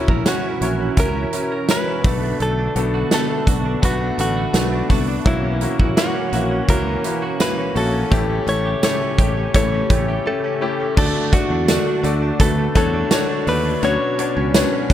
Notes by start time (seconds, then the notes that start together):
Already playing: B2 E3 C#4 E4 F#4 A#4
0.08 A#1 A#4, kick
0.25 C#4 E4 F#4 C#5, snare, closed hi-hat, tambourine
0.45 E4
0.61 A#1 C#4 E4 F#4 A#4 C#5, closed hi-hat, tambourine
0.81 E4
0.96 C#2 C#4 E4 F#4 A#4, kick, closed hi-hat, tambourine
1.16 E4
1.32 C#4 E4 F#4 A#4, closed hi-hat, tambourine
1.52 A#4
1.68 C#4 E4 F#4 A#4 B4, snare, closed hi-hat, tambourine
1.87 E4
2.04 B1 B2 D3 A3 B3 D4 F#4 A4, kick, open hi-hat, tambourine
2.23 D4
2.40 B1 A3 A4, closed hi-hat
2.59 D4
2.76 B1 A3 B3 D4 F#4 A4, closed hi-hat, tambourine
2.94 F#4
3.11 A3 B3 D4 F#4 A4, snare, closed hi-hat, tambourine
3.30 D4
3.47 B1 B3 D4 F#4 A4, kick, closed hi-hat, tambourine
3.65 D4
3.82 B1 A3 B3 D4 F#4 B4, kick, closed hi-hat, tambourine
4.01 D4
4.18 A1 A3 B3 D4 F#4 A4, closed hi-hat, tambourine
4.37 F#4
4.53 B1 A3 B3 D4 F#4 B4, snare, closed hi-hat, tambourine
4.72 D4
4.89 C2 B3 D4 F#4 A4, kick, open hi-hat, tambourine
5.08 D4
5.25 B1 B2 E3 A#3 C#4 E4 F#4, kick, closed hi-hat
5.44 C#4
5.61 A#3 C#4 E4 F#4, closed hi-hat, tambourine
5.79 A#1 F#4, kick
5.96 A#3 C#4 E4 F#4, snare, closed hi-hat, tambourine
6.15 C#4
6.33 A#1 A#3 C#4 E4 F#4, closed hi-hat, tambourine
6.51 C#4
6.68 C#2 E3 A#3 C#4 E4 F#4 A#4, kick, closed hi-hat, tambourine
6.87 C#4
7.04 A#3 C#4 E4 F#4, closed hi-hat, tambourine
7.22 F#4
7.40 A#3 C#4 E4 F#4 B4, snare, closed hi-hat, tambourine
7.58 C#4
7.75 A#1 A#3 C#4 E4 F#4 A4, open hi-hat, tambourine
7.93 C#4
8.11 A1 A2 C#3 E3 A3 C#4 E4 G4, kick, closed hi-hat
8.30 C#4
8.47 A1 A3 C#4 E4 A4 C#5, closed hi-hat
8.66 G4
8.83 A3 C#4 E4 G4 C#5, snare, closed hi-hat, tambourine
9.01 C#4
9.18 A1 A3 C#4 E4 G4, kick, closed hi-hat, tambourine
9.37 C#4
9.54 A1 E3 A3 C#4 E4 A4 C#5, kick, closed hi-hat, tambourine
9.72 C#4
9.90 A1 A3 C#4 E4 G4, kick, closed hi-hat, tambourine
10.08 G4
10.25 A3 C#4 E4 G4 A4
10.44 C#4
10.61 A3 C#4 E4 G4
10.80 C#4
10.97 D2 D3 A3 D4 F#4 A4 D5, kick, crash
11.15 A3
11.32 A3 D4 F#4 A4 D5, kick, closed hi-hat
11.50 E2 D4
11.68 A3 D4 F#4 A4 D5, snare, closed hi-hat, tambourine
11.87 D4
12.03 D2 A3 D4 F#4 A4 D5, closed hi-hat, tambourine
12.22 D4
12.39 D2 A3 D4 F#4 A4 B4, kick, closed hi-hat, tambourine
12.58 A3
12.75 E2 A3 D4 F#4 A4 C#5, kick, closed hi-hat, tambourine
12.94 D4
13.11 A3 D4 F#4 A4 C#5, snare, closed hi-hat, tambourine
13.29 D4
13.47 D#2 A3 D4 F#4 A4 B4 D5, open hi-hat, tambourine
13.65 D4
13.82 D2 B2 F#3 B3 C#4 D4 F#4 B4 C#5, closed hi-hat, tambourine
14.01 F#3
14.18 C#4 D4 F#4 B4 C#5, closed hi-hat
14.37 C#2 C#4
14.54 C#4 D4 F#4 B4 C#5, snare, closed hi-hat, tambourine
14.73 C#4
14.89 D2 C#4 D4 F#4, kick